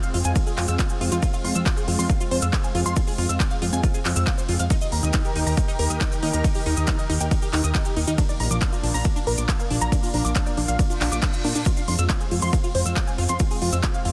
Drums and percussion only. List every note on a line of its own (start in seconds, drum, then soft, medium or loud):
0.03 closed hi-hat soft
0.03 cabasa soft
0.14 open hi-hat loud
0.24 closed hi-hat medium
0.24 cabasa medium
0.36 kick loud
0.36 closed hi-hat medium
0.36 ride medium
0.36 cabasa medium
0.47 closed hi-hat soft
0.47 cabasa soft
0.58 clap medium
0.58 open hi-hat loud
0.68 closed hi-hat medium
0.68 cabasa medium
0.79 kick loud
0.79 clap loud
0.79 closed hi-hat medium
0.79 ride medium
0.79 cabasa medium
0.89 closed hi-hat soft
0.89 cabasa soft
1.01 open hi-hat loud
1.12 closed hi-hat medium
1.12 cabasa medium
1.23 kick loud
1.23 closed hi-hat medium
1.23 ride medium
1.23 cabasa medium
1.33 closed hi-hat soft
1.33 cabasa soft
1.45 open hi-hat loud
1.55 closed hi-hat medium
1.55 cabasa medium
1.66 kick loud
1.66 clap loud
1.66 closed hi-hat medium
1.66 ride medium
1.66 cabasa medium
1.77 closed hi-hat soft
1.77 cabasa soft
1.88 open hi-hat loud
1.99 open hi-hat medium
1.99 cabasa medium
2.10 kick loud
2.10 closed hi-hat medium
2.10 ride medium
2.10 cabasa medium
2.20 closed hi-hat soft
2.20 cabasa soft
2.31 open hi-hat loud
2.42 closed hi-hat medium
2.42 cabasa medium
2.53 kick loud
2.53 clap loud
2.53 closed hi-hat medium
2.53 ride medium
2.53 cabasa medium
2.64 closed hi-hat soft
2.64 cabasa soft
2.75 open hi-hat loud
2.86 closed hi-hat medium
2.86 cabasa medium
2.96 kick loud
2.96 closed hi-hat medium
2.96 ride medium
2.96 cabasa medium
3.07 open hi-hat medium
3.07 cabasa soft
3.18 open hi-hat loud
3.29 closed hi-hat medium
3.29 cabasa medium
3.40 kick loud
3.40 clap loud
3.40 closed hi-hat medium
3.40 ride medium
3.40 cabasa medium
3.50 closed hi-hat soft
3.50 cabasa soft
3.62 open hi-hat loud
3.73 closed hi-hat soft
3.73 cabasa medium
3.84 kick loud
3.84 closed hi-hat medium
3.84 ride medium
3.84 cabasa medium
3.94 closed hi-hat soft
3.94 cabasa soft
4.05 clap medium
4.05 open hi-hat loud
4.16 closed hi-hat medium
4.16 cabasa medium
4.27 kick loud
4.27 clap loud
4.27 closed hi-hat medium
4.27 ride medium
4.27 cabasa medium
4.38 closed hi-hat soft
4.38 cabasa soft
4.49 open hi-hat loud
4.59 closed hi-hat medium
4.59 cabasa medium
4.70 kick loud
4.70 closed hi-hat medium
4.70 ride medium
4.70 cabasa medium
4.81 closed hi-hat soft
4.81 cabasa soft
4.92 open hi-hat loud
5.03 closed hi-hat medium
5.03 cabasa medium
5.13 kick loud
5.13 clap loud
5.13 closed hi-hat medium
5.13 ride medium
5.13 cabasa medium
5.25 closed hi-hat soft
5.25 cabasa soft
5.36 open hi-hat loud
5.46 open hi-hat medium
5.46 cabasa medium
5.57 kick loud
5.57 closed hi-hat medium
5.57 ride medium
5.57 cabasa medium
5.68 closed hi-hat soft
5.68 cabasa soft
5.79 open hi-hat loud
5.90 closed hi-hat medium
5.90 cabasa medium
6.01 kick loud
6.01 clap loud
6.01 closed hi-hat medium
6.01 ride medium
6.01 cabasa medium
6.12 closed hi-hat soft
6.12 cabasa soft
6.23 open hi-hat loud
6.33 closed hi-hat medium
6.33 cabasa medium
6.44 kick loud
6.44 closed hi-hat medium
6.44 ride medium
6.44 cabasa medium
6.55 open hi-hat medium
6.55 cabasa soft
6.66 open hi-hat loud
6.77 closed hi-hat medium
6.77 cabasa medium
6.87 kick loud
6.87 clap loud
6.87 closed hi-hat medium
6.87 ride medium
6.87 cabasa medium
6.99 closed hi-hat soft
6.99 cabasa soft
7.10 open hi-hat loud
7.20 closed hi-hat medium
7.20 cabasa medium
7.31 kick loud
7.31 closed hi-hat medium
7.31 ride medium
7.31 cabasa medium
7.42 closed hi-hat soft
7.42 cabasa soft
7.53 clap medium
7.53 open hi-hat loud
7.64 closed hi-hat medium
7.64 cabasa medium
7.75 kick loud
7.75 clap loud
7.75 closed hi-hat medium
7.75 ride medium
7.75 cabasa medium
7.85 closed hi-hat soft
7.85 cabasa soft
7.96 open hi-hat loud
8.07 closed hi-hat medium
8.07 cabasa medium
8.18 kick loud
8.18 closed hi-hat medium
8.18 ride medium
8.18 cabasa medium
8.29 closed hi-hat soft
8.29 cabasa soft
8.40 open hi-hat loud
8.51 closed hi-hat medium
8.51 cabasa medium
8.61 kick loud
8.61 clap loud
8.61 closed hi-hat medium
8.61 ride medium
8.61 cabasa medium
8.73 closed hi-hat soft
8.73 cabasa soft
8.83 open hi-hat loud
8.94 open hi-hat medium
8.94 cabasa medium
9.04 kick loud
9.04 ride medium
9.04 cabasa medium
9.16 closed hi-hat soft
9.16 cabasa soft
9.27 open hi-hat loud
9.38 closed hi-hat medium
9.38 cabasa medium
9.49 kick loud
9.49 clap loud
9.49 closed hi-hat medium
9.49 ride medium
9.49 cabasa medium
9.60 closed hi-hat soft
9.60 cabasa soft
9.70 open hi-hat loud
9.81 closed hi-hat medium
9.81 cabasa medium
9.92 kick loud
9.92 closed hi-hat medium
9.92 ride medium
9.92 cabasa medium
10.03 open hi-hat medium
10.03 cabasa soft
10.14 open hi-hat loud
10.25 closed hi-hat medium
10.25 cabasa medium
10.35 kick loud
10.35 clap loud
10.35 closed hi-hat medium
10.35 ride medium
10.35 cabasa medium
10.46 closed hi-hat soft
10.46 cabasa soft
10.57 open hi-hat loud
10.68 closed hi-hat medium
10.68 cabasa medium
10.79 kick loud
10.79 closed hi-hat medium
10.79 ride medium
10.79 cabasa medium
10.90 closed hi-hat soft
10.90 cabasa soft
11.01 clap medium
11.01 open hi-hat loud
11.12 closed hi-hat medium
11.12 cabasa medium
11.22 kick loud
11.22 clap loud
11.22 closed hi-hat medium
11.22 ride medium
11.22 cabasa medium
11.33 closed hi-hat soft
11.33 cabasa soft
11.44 open hi-hat loud
11.55 closed hi-hat medium
11.55 cabasa medium
11.66 kick loud
11.66 closed hi-hat medium
11.66 ride medium
11.66 cabasa medium
11.77 closed hi-hat soft
11.77 cabasa soft
11.88 open hi-hat loud
11.99 closed hi-hat medium
11.99 cabasa medium
12.10 kick loud
12.10 clap loud
12.10 closed hi-hat medium
12.10 ride medium
12.10 cabasa medium
12.20 closed hi-hat soft
12.20 cabasa soft
12.31 open hi-hat loud
12.42 open hi-hat medium
12.42 cabasa medium
12.53 kick loud
12.53 closed hi-hat medium
12.53 ride medium
12.53 cabasa medium
12.64 closed hi-hat soft
12.64 cabasa soft
12.75 open hi-hat loud
12.86 closed hi-hat medium
12.86 cabasa medium
12.96 kick loud
12.96 clap loud
12.96 closed hi-hat medium
12.96 ride medium
12.96 cabasa medium
13.07 closed hi-hat soft
13.07 cabasa soft
13.18 open hi-hat loud
13.29 closed hi-hat medium
13.29 cabasa medium
13.39 kick loud
13.39 closed hi-hat medium
13.39 ride medium
13.39 cabasa medium
13.51 open hi-hat medium
13.51 cabasa soft
13.62 open hi-hat loud
13.73 closed hi-hat medium
13.73 cabasa medium
13.83 kick loud
13.83 clap loud
13.83 closed hi-hat medium
13.83 ride medium
13.83 cabasa medium
13.94 closed hi-hat soft
13.94 cabasa soft
14.05 open hi-hat loud